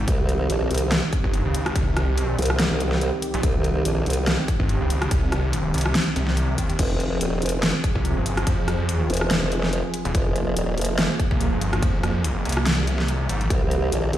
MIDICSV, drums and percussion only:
0, 0, Header, 1, 2, 480
1, 0, Start_track
1, 0, Key_signature, -4, "minor"
1, 0, Tempo, 419580
1, 89, Time_signature, 4, 2, 24, 8
1, 16221, End_track
2, 0, Start_track
2, 0, Title_t, "Drums"
2, 88, Note_on_c, 9, 42, 74
2, 89, Note_on_c, 9, 36, 119
2, 203, Note_off_c, 9, 36, 0
2, 203, Note_off_c, 9, 42, 0
2, 329, Note_on_c, 9, 42, 51
2, 444, Note_off_c, 9, 42, 0
2, 569, Note_on_c, 9, 42, 81
2, 683, Note_off_c, 9, 42, 0
2, 808, Note_on_c, 9, 42, 47
2, 852, Note_off_c, 9, 42, 0
2, 852, Note_on_c, 9, 42, 58
2, 888, Note_off_c, 9, 42, 0
2, 888, Note_on_c, 9, 42, 76
2, 1003, Note_off_c, 9, 42, 0
2, 1048, Note_on_c, 9, 37, 54
2, 1048, Note_on_c, 9, 38, 111
2, 1048, Note_on_c, 9, 42, 73
2, 1163, Note_off_c, 9, 37, 0
2, 1163, Note_off_c, 9, 38, 0
2, 1163, Note_off_c, 9, 42, 0
2, 1289, Note_on_c, 9, 36, 105
2, 1289, Note_on_c, 9, 42, 51
2, 1403, Note_off_c, 9, 36, 0
2, 1403, Note_off_c, 9, 42, 0
2, 1420, Note_on_c, 9, 36, 61
2, 1528, Note_on_c, 9, 42, 52
2, 1534, Note_off_c, 9, 36, 0
2, 1643, Note_off_c, 9, 42, 0
2, 1768, Note_on_c, 9, 42, 78
2, 1882, Note_off_c, 9, 42, 0
2, 1900, Note_on_c, 9, 37, 82
2, 1900, Note_on_c, 9, 42, 35
2, 2009, Note_off_c, 9, 42, 0
2, 2009, Note_on_c, 9, 36, 113
2, 2009, Note_on_c, 9, 42, 78
2, 2015, Note_off_c, 9, 37, 0
2, 2123, Note_off_c, 9, 36, 0
2, 2123, Note_off_c, 9, 42, 0
2, 2249, Note_on_c, 9, 37, 85
2, 2249, Note_on_c, 9, 42, 51
2, 2363, Note_off_c, 9, 37, 0
2, 2363, Note_off_c, 9, 42, 0
2, 2489, Note_on_c, 9, 42, 78
2, 2604, Note_off_c, 9, 42, 0
2, 2729, Note_on_c, 9, 42, 46
2, 2772, Note_off_c, 9, 42, 0
2, 2772, Note_on_c, 9, 42, 60
2, 2809, Note_off_c, 9, 42, 0
2, 2809, Note_on_c, 9, 42, 76
2, 2860, Note_on_c, 9, 37, 82
2, 2923, Note_off_c, 9, 42, 0
2, 2969, Note_on_c, 9, 38, 113
2, 2969, Note_on_c, 9, 42, 75
2, 2974, Note_off_c, 9, 37, 0
2, 3083, Note_off_c, 9, 38, 0
2, 3083, Note_off_c, 9, 42, 0
2, 3209, Note_on_c, 9, 42, 48
2, 3323, Note_off_c, 9, 42, 0
2, 3340, Note_on_c, 9, 38, 35
2, 3448, Note_on_c, 9, 42, 51
2, 3454, Note_off_c, 9, 38, 0
2, 3562, Note_off_c, 9, 42, 0
2, 3688, Note_on_c, 9, 42, 77
2, 3802, Note_off_c, 9, 42, 0
2, 3819, Note_on_c, 9, 42, 35
2, 3928, Note_off_c, 9, 42, 0
2, 3928, Note_on_c, 9, 36, 111
2, 3928, Note_on_c, 9, 42, 78
2, 4042, Note_off_c, 9, 42, 0
2, 4043, Note_off_c, 9, 36, 0
2, 4168, Note_on_c, 9, 42, 50
2, 4282, Note_off_c, 9, 42, 0
2, 4408, Note_on_c, 9, 42, 84
2, 4522, Note_off_c, 9, 42, 0
2, 4648, Note_on_c, 9, 42, 49
2, 4692, Note_off_c, 9, 42, 0
2, 4692, Note_on_c, 9, 42, 62
2, 4728, Note_off_c, 9, 42, 0
2, 4728, Note_on_c, 9, 42, 81
2, 4843, Note_off_c, 9, 42, 0
2, 4888, Note_on_c, 9, 37, 56
2, 4888, Note_on_c, 9, 38, 111
2, 4888, Note_on_c, 9, 42, 75
2, 5003, Note_off_c, 9, 37, 0
2, 5003, Note_off_c, 9, 38, 0
2, 5003, Note_off_c, 9, 42, 0
2, 5129, Note_on_c, 9, 36, 103
2, 5129, Note_on_c, 9, 42, 54
2, 5243, Note_off_c, 9, 36, 0
2, 5243, Note_off_c, 9, 42, 0
2, 5260, Note_on_c, 9, 36, 60
2, 5369, Note_on_c, 9, 42, 51
2, 5374, Note_off_c, 9, 36, 0
2, 5483, Note_off_c, 9, 42, 0
2, 5609, Note_on_c, 9, 42, 79
2, 5723, Note_off_c, 9, 42, 0
2, 5740, Note_on_c, 9, 37, 86
2, 5740, Note_on_c, 9, 42, 37
2, 5848, Note_off_c, 9, 42, 0
2, 5848, Note_on_c, 9, 42, 80
2, 5849, Note_on_c, 9, 36, 117
2, 5854, Note_off_c, 9, 37, 0
2, 5962, Note_off_c, 9, 42, 0
2, 5963, Note_off_c, 9, 36, 0
2, 6089, Note_on_c, 9, 37, 82
2, 6089, Note_on_c, 9, 42, 53
2, 6203, Note_off_c, 9, 37, 0
2, 6203, Note_off_c, 9, 42, 0
2, 6328, Note_on_c, 9, 42, 85
2, 6443, Note_off_c, 9, 42, 0
2, 6568, Note_on_c, 9, 42, 51
2, 6612, Note_off_c, 9, 42, 0
2, 6612, Note_on_c, 9, 42, 64
2, 6648, Note_off_c, 9, 42, 0
2, 6648, Note_on_c, 9, 42, 81
2, 6699, Note_on_c, 9, 37, 83
2, 6762, Note_off_c, 9, 42, 0
2, 6808, Note_on_c, 9, 38, 110
2, 6808, Note_on_c, 9, 42, 80
2, 6813, Note_off_c, 9, 37, 0
2, 6923, Note_off_c, 9, 38, 0
2, 6923, Note_off_c, 9, 42, 0
2, 7048, Note_on_c, 9, 42, 52
2, 7163, Note_off_c, 9, 42, 0
2, 7179, Note_on_c, 9, 38, 36
2, 7288, Note_on_c, 9, 42, 55
2, 7294, Note_off_c, 9, 38, 0
2, 7402, Note_off_c, 9, 42, 0
2, 7528, Note_on_c, 9, 42, 83
2, 7529, Note_on_c, 9, 36, 61
2, 7643, Note_off_c, 9, 36, 0
2, 7643, Note_off_c, 9, 42, 0
2, 7660, Note_on_c, 9, 42, 39
2, 7767, Note_off_c, 9, 42, 0
2, 7767, Note_on_c, 9, 42, 86
2, 7767, Note_on_c, 9, 49, 78
2, 7769, Note_on_c, 9, 36, 122
2, 7882, Note_off_c, 9, 42, 0
2, 7882, Note_off_c, 9, 49, 0
2, 7883, Note_off_c, 9, 36, 0
2, 8008, Note_on_c, 9, 42, 56
2, 8122, Note_off_c, 9, 42, 0
2, 8248, Note_on_c, 9, 42, 87
2, 8362, Note_off_c, 9, 42, 0
2, 8487, Note_on_c, 9, 42, 51
2, 8532, Note_off_c, 9, 42, 0
2, 8532, Note_on_c, 9, 42, 68
2, 8568, Note_off_c, 9, 42, 0
2, 8568, Note_on_c, 9, 42, 80
2, 8683, Note_off_c, 9, 42, 0
2, 8728, Note_on_c, 9, 37, 51
2, 8728, Note_on_c, 9, 38, 113
2, 8728, Note_on_c, 9, 42, 83
2, 8842, Note_off_c, 9, 37, 0
2, 8842, Note_off_c, 9, 38, 0
2, 8842, Note_off_c, 9, 42, 0
2, 8968, Note_on_c, 9, 36, 106
2, 8969, Note_on_c, 9, 42, 54
2, 9082, Note_off_c, 9, 36, 0
2, 9083, Note_off_c, 9, 42, 0
2, 9100, Note_on_c, 9, 36, 60
2, 9209, Note_on_c, 9, 42, 54
2, 9214, Note_off_c, 9, 36, 0
2, 9323, Note_off_c, 9, 42, 0
2, 9448, Note_on_c, 9, 42, 81
2, 9563, Note_off_c, 9, 42, 0
2, 9580, Note_on_c, 9, 37, 83
2, 9580, Note_on_c, 9, 42, 39
2, 9688, Note_off_c, 9, 42, 0
2, 9688, Note_on_c, 9, 36, 127
2, 9688, Note_on_c, 9, 42, 87
2, 9694, Note_off_c, 9, 37, 0
2, 9802, Note_off_c, 9, 42, 0
2, 9803, Note_off_c, 9, 36, 0
2, 9929, Note_on_c, 9, 37, 75
2, 9929, Note_on_c, 9, 42, 55
2, 10043, Note_off_c, 9, 37, 0
2, 10043, Note_off_c, 9, 42, 0
2, 10169, Note_on_c, 9, 42, 88
2, 10283, Note_off_c, 9, 42, 0
2, 10409, Note_on_c, 9, 42, 53
2, 10452, Note_off_c, 9, 42, 0
2, 10452, Note_on_c, 9, 42, 65
2, 10488, Note_off_c, 9, 42, 0
2, 10488, Note_on_c, 9, 42, 83
2, 10539, Note_on_c, 9, 37, 81
2, 10602, Note_off_c, 9, 42, 0
2, 10648, Note_on_c, 9, 38, 115
2, 10648, Note_on_c, 9, 42, 80
2, 10654, Note_off_c, 9, 37, 0
2, 10762, Note_off_c, 9, 38, 0
2, 10762, Note_off_c, 9, 42, 0
2, 10888, Note_on_c, 9, 42, 54
2, 11002, Note_off_c, 9, 42, 0
2, 11019, Note_on_c, 9, 38, 41
2, 11128, Note_on_c, 9, 42, 53
2, 11134, Note_off_c, 9, 38, 0
2, 11243, Note_off_c, 9, 42, 0
2, 11367, Note_on_c, 9, 42, 83
2, 11482, Note_off_c, 9, 42, 0
2, 11500, Note_on_c, 9, 42, 40
2, 11608, Note_off_c, 9, 42, 0
2, 11608, Note_on_c, 9, 36, 122
2, 11608, Note_on_c, 9, 42, 83
2, 11722, Note_off_c, 9, 42, 0
2, 11723, Note_off_c, 9, 36, 0
2, 11848, Note_on_c, 9, 42, 56
2, 11962, Note_off_c, 9, 42, 0
2, 12087, Note_on_c, 9, 42, 84
2, 12202, Note_off_c, 9, 42, 0
2, 12328, Note_on_c, 9, 42, 50
2, 12372, Note_off_c, 9, 42, 0
2, 12372, Note_on_c, 9, 42, 66
2, 12408, Note_off_c, 9, 42, 0
2, 12408, Note_on_c, 9, 42, 84
2, 12522, Note_off_c, 9, 42, 0
2, 12568, Note_on_c, 9, 37, 47
2, 12568, Note_on_c, 9, 38, 123
2, 12568, Note_on_c, 9, 42, 75
2, 12682, Note_off_c, 9, 37, 0
2, 12682, Note_off_c, 9, 38, 0
2, 12682, Note_off_c, 9, 42, 0
2, 12808, Note_on_c, 9, 36, 115
2, 12808, Note_on_c, 9, 42, 51
2, 12922, Note_off_c, 9, 36, 0
2, 12923, Note_off_c, 9, 42, 0
2, 12939, Note_on_c, 9, 36, 67
2, 13048, Note_on_c, 9, 42, 53
2, 13054, Note_off_c, 9, 36, 0
2, 13163, Note_off_c, 9, 42, 0
2, 13287, Note_on_c, 9, 42, 83
2, 13402, Note_off_c, 9, 42, 0
2, 13419, Note_on_c, 9, 37, 78
2, 13419, Note_on_c, 9, 42, 37
2, 13528, Note_off_c, 9, 42, 0
2, 13528, Note_on_c, 9, 36, 127
2, 13528, Note_on_c, 9, 42, 77
2, 13533, Note_off_c, 9, 37, 0
2, 13642, Note_off_c, 9, 36, 0
2, 13642, Note_off_c, 9, 42, 0
2, 13768, Note_on_c, 9, 37, 75
2, 13768, Note_on_c, 9, 42, 51
2, 13882, Note_off_c, 9, 37, 0
2, 13882, Note_off_c, 9, 42, 0
2, 14008, Note_on_c, 9, 42, 86
2, 14122, Note_off_c, 9, 42, 0
2, 14248, Note_on_c, 9, 42, 47
2, 14292, Note_off_c, 9, 42, 0
2, 14292, Note_on_c, 9, 42, 64
2, 14328, Note_off_c, 9, 42, 0
2, 14328, Note_on_c, 9, 42, 79
2, 14379, Note_on_c, 9, 37, 80
2, 14443, Note_off_c, 9, 42, 0
2, 14488, Note_on_c, 9, 38, 120
2, 14488, Note_on_c, 9, 42, 74
2, 14494, Note_off_c, 9, 37, 0
2, 14602, Note_off_c, 9, 38, 0
2, 14602, Note_off_c, 9, 42, 0
2, 14728, Note_on_c, 9, 42, 54
2, 14842, Note_off_c, 9, 42, 0
2, 14861, Note_on_c, 9, 38, 38
2, 14969, Note_on_c, 9, 42, 54
2, 14975, Note_off_c, 9, 38, 0
2, 15083, Note_off_c, 9, 42, 0
2, 15209, Note_on_c, 9, 42, 81
2, 15323, Note_off_c, 9, 42, 0
2, 15340, Note_on_c, 9, 42, 36
2, 15448, Note_on_c, 9, 36, 122
2, 15449, Note_off_c, 9, 42, 0
2, 15449, Note_on_c, 9, 42, 81
2, 15563, Note_off_c, 9, 36, 0
2, 15563, Note_off_c, 9, 42, 0
2, 15688, Note_on_c, 9, 42, 51
2, 15803, Note_off_c, 9, 42, 0
2, 15929, Note_on_c, 9, 42, 77
2, 16043, Note_off_c, 9, 42, 0
2, 16169, Note_on_c, 9, 42, 47
2, 16221, Note_off_c, 9, 42, 0
2, 16221, End_track
0, 0, End_of_file